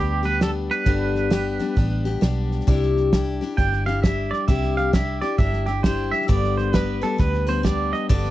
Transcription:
Already playing: fingered electric bass D2, steel-string acoustic guitar G3 B3 D4 G4, clean electric guitar G4, pedal steel guitar G4 B4 D5
0.23 steel-string acoustic guitar G3 B3 D4 G4, clean electric guitar B4, snare
0.41 steel-string acoustic guitar G3 B3 D4 G4, clean electric guitar A4, snare, hi-hat pedal
0.70 clean electric guitar B4, snare
0.86 fingered electric bass G1, steel-string acoustic guitar G2 D3 G3 B3 D4 G4, kick, snare
1.15 snare
1.30 steel-string acoustic guitar G3 B3 D4 G4, snare, hi-hat pedal
1.59 steel-string acoustic guitar G3 B3 D4 G4, snare
1.76 fingered electric bass A1, steel-string acoustic guitar G3 B3 D4 G4, kick, snare
2.05 steel-string acoustic guitar G3 B3 D4 G4, snare
2.21 fingered electric bass B1, steel-string acoustic guitar G3 B3 D4 G4, snare, hi-hat pedal
2.51 snare
2.60 snare
2.67 fingered electric bass C2, steel-string acoustic guitar C3 G3 D4 E4 G4, kick, snare
2.82 snare
2.97 snare
3.13 steel-string acoustic guitar G3 D4 E4 G4, kick, snare, hi-hat pedal
3.41 steel-string acoustic guitar D4 E4 G4, snare
3.57 fingered electric bass G1, steel-string acoustic guitar G3 D4 E4 G4, pedal steel guitar G5, kick, snare
3.73 snare
3.86 steel-string acoustic guitar D4 E4 G4, pedal steel guitar F5, snare
4.02 steel-string acoustic guitar G3 D4 E4 G4, pedal steel guitar E5, kick, snare, hi-hat pedal
4.31 pedal steel guitar D5, snare
4.48 fingered electric bass C2, steel-string acoustic guitar C3 G3 D4 E4 G4, pedal steel guitar E5, kick, snare
4.63 snare
4.77 pedal steel guitar F5, snare
4.93 steel-string acoustic guitar G3 D4 E4 G4, pedal steel guitar E5, kick, snare, hi-hat pedal
5.21 steel-string acoustic guitar D4 E4 G4, pedal steel guitar D5, snare
5.38 fingered electric bass G1, steel-string acoustic guitar G3 D4 E4 G4, pedal steel guitar E5, kick, snare
5.53 snare
5.66 steel-string acoustic guitar D4 E4 G4, pedal steel guitar G4, snare
5.83 steel-string acoustic guitar G3 D4 E4 G4, pedal steel guitar C5, kick, snare, hi-hat pedal
6.11 pedal steel guitar E5, snare
6.21 snare
6.28 fingered electric bass G1, steel-string acoustic guitar G2 D3 G3 B3 D4 B4, pedal steel guitar D5, kick, snare
6.44 snare
6.57 pedal steel guitar C5, snare
6.73 steel-string acoustic guitar G3 B3 D4 B4, pedal steel guitar B4, kick, snare, hi-hat pedal
7.01 steel-string acoustic guitar G3 B3 D4 B4, pedal steel guitar A4, snare
7.18 fingered electric bass D2, steel-string acoustic guitar G3 B3 D4 B4, pedal steel guitar B4, kick, snare
7.34 snare
7.47 steel-string acoustic guitar G3 B3 D4 B4, pedal steel guitar C5, snare
7.63 steel-string acoustic guitar G3 B3 D4 B4, pedal steel guitar D5, kick, snare, hi-hat pedal
7.93 pedal steel guitar D#5, snare
8.09 fingered electric bass G1, steel-string acoustic guitar G2 D3 G3 B3 D4 B4, pedal steel guitar D5, kick, snare
8.25 snare

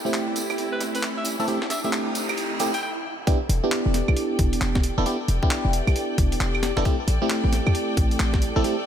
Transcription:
Already playing: string section E4 A4 D5 G5, string machine G4 G5, riser
0.05 fm electric piano A3 C4 E4 G4, tambourine
0.14 clap, closed hi-hat
0.28 808-style bass A1
0.36 closed hi-hat, tambourine
0.50 808-style bass E2, closed hi-hat, tambourine, claves
0.58 closed hi-hat, tambourine
0.72 alto saxophone B4
0.81 808-style bass A1, snare, closed hi-hat, tambourine
0.95 alto saxophone B4, closed hi-hat, tambourine
1.03 808-style bass A1, clap, closed hi-hat, tambourine
1.17 alto saxophone E5
1.25 closed hi-hat, tambourine
1.40 808-style bass A1, fm electric piano A3 C4 E4 A4, tambourine
1.48 fm electric piano A3 C4 E4 G4, closed hi-hat, tambourine, noise sweep
1.62 snare
1.70 808-style bass A1, alto saxophone E5, snare, closed hi-hat, tambourine
1.84 fm electric piano A3 C4 E4 G4, alto saxophone E5, tambourine
1.93 clap, closed hi-hat, tambourine
2.07 808-style bass A1
2.15 closed hi-hat, tambourine
2.29 808-style bass E2, closed hi-hat, tambourine, claves
2.37 closed hi-hat, tambourine
2.59 808-style bass A1, fm electric piano A3 C4 E4 G4, closed hi-hat, tambourine
2.74 alto saxophone G5, closed hi-hat, tambourine
2.82 alto saxophone G5
3.27 fm electric piano B3 D4 E4 G4, kick, closed hi-hat
3.44 string section A4
3.49 808-style bass E1, closed hi-hat
3.56 string section D5
3.64 fm electric piano B3 D4 E4 G4
3.72 clap, closed hi-hat
3.86 808-style bass E1
3.94 snare, closed hi-hat
4.08 808-style bass B1, claves
4.15 string section G5, closed hi-hat
4.39 808-style bass E1, kick, closed hi-hat
4.53 closed hi-hat
4.61 808-style bass E1, clap, closed hi-hat
4.75 kick, snare
4.83 closed hi-hat
4.98 808-style bass E1, fm electric piano B3 D4 E4 A4
5.06 fm electric piano B3 D4 E4 G4, closed hi-hat
5.28 808-style bass E1, closed hi-hat
5.43 fm electric piano B3 D4 E4 G4, kick
5.51 clap, closed hi-hat
5.65 808-style bass E1
5.73 closed hi-hat
5.87 808-style bass B1, closed hi-hat, claves
5.96 closed hi-hat
6.18 808-style bass E1, kick, closed hi-hat
6.32 closed hi-hat
6.40 808-style bass E1, clap, closed hi-hat
6.55 claves
6.63 snare, closed hi-hat
6.77 808-style bass E1, fm electric piano B3 D4 E4 A4, snare
6.85 fm electric piano A3 C4 E4 G4, kick, closed hi-hat
7.08 808-style bass A1, closed hi-hat
7.22 fm electric piano A3 C4 E4 G4
7.30 clap, closed hi-hat
7.44 808-style bass A1
7.53 snare, closed hi-hat
7.67 808-style bass E2, claves
7.75 closed hi-hat
7.97 808-style bass A1, kick, closed hi-hat
8.11 closed hi-hat
8.19 808-style bass A1, clap, closed hi-hat
8.34 kick, snare
8.42 closed hi-hat
8.56 808-style bass A1, fm electric piano A3 C4 E4 A4
8.64 fm electric piano A3 C4 E4 G4, closed hi-hat

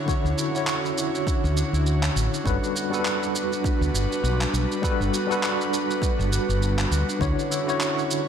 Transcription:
Already playing: tine electric piano D3 E4 F#4 C#5, analog synth pad D3 E4 F#4 C#5, harp D4 E4
0.06 tine electric piano D3 E4 F#4 C#5, harp C#4, kick, shaker
0.25 fretless electric bass D2, harp D4, shaker
0.37 harp E4, shaker
0.52 tine electric piano D3 E4 F#4, harp C#4, shaker
0.56 tine electric piano C#5
0.67 clap, shaker
0.85 shaker
0.97 harp D4, shaker
1.14 harp E4, shaker
1.27 kick, shaker
1.44 fretless electric bass D2, harp C#4, shaker
1.57 harp D4, shaker
1.73 fretless electric bass D2, harp E4, shaker
1.86 shaker
2.03 clap, shaker
2.16 fretless electric bass A1, harp C#4, shaker
2.33 harp D4, shaker
2.44 fretless electric bass G1, tine electric piano G3 D4 F#4 A4 B4, analog synth pad G3 D4 B4, harp B3, kick, shaker
2.63 harp D4, shaker
2.75 harp F#4, shaker
2.90 tine electric piano G3 D4 F#4 A4, harp B3, shaker
2.95 tine electric piano B4
3.05 clap, shaker
3.23 shaker
3.34 harp D4, shaker
3.51 harp F#4, shaker
3.64 kick, shaker
3.81 fretless electric bass D2, harp B3, shaker
3.94 fretless electric bass G1, harp D4, shaker
4.11 harp F#4, shaker
4.24 fretless electric bass B1, shaker
4.41 clap, shaker
4.53 fretless electric bass B1, harp B3, shaker
4.71 harp D4, shaker
4.82 tine electric piano G3 D4 F#4 A4 B4, harp B3, kick, shaker
5.00 fretless electric bass G1, harp D4, shaker
5.13 harp F#4, shaker
5.27 tine electric piano G3 D4 F#4 A4, harp B3
5.31 tine electric piano B4, shaker
5.43 clap, shaker
5.61 shaker
5.72 harp D4, shaker
5.90 harp F#4, shaker
6.02 kick, shaker
6.19 fretless electric bass G1, harp B3, shaker
6.32 harp F#4, shaker
6.49 fretless electric bass G1, harp B3, shaker
6.62 shaker
6.79 harp B4, clap, shaker
6.91 fretless electric bass D2, harp F#4, shaker
7.08 harp D4, shaker
7.19 fretless electric bass D2, tine electric piano D3 E4 F#4 C#5, analog synth pad D3 E4 C#5, harp C#4, kick, shaker
7.38 harp D4, shaker
7.51 harp E4, shaker
7.64 tine electric piano D3 E4, harp C#4
7.68 tine electric piano F#4 C#5, shaker
7.80 clap, shaker
7.98 shaker
8.10 harp D4, shaker

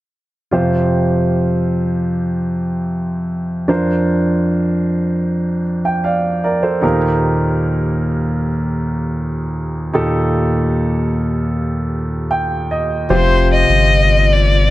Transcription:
0.51 grand piano F2 C3 F4 G4 C5
3.68 grand piano F2 F3 D4 A#4 C5
5.85 grand piano G5
6.04 grand piano D5 F5
6.44 grand piano A#4 D5
6.63 grand piano A4 C5
6.81 grand piano D#2 A#2 D#4 G4 A#4
9.93 grand piano D#2 A#2 D#4 G4 A4
12.31 grand piano G5
12.71 grand piano D#5
13.09 sub bass F1, grand piano C3 F4 G4 C5, steel-string acoustic guitar F3 C4 F4 G4
13.13 violin C5
13.52 violin D#5
13.69 sub bass G1
14.32 violin D5
14.67 steel-string acoustic guitar F3

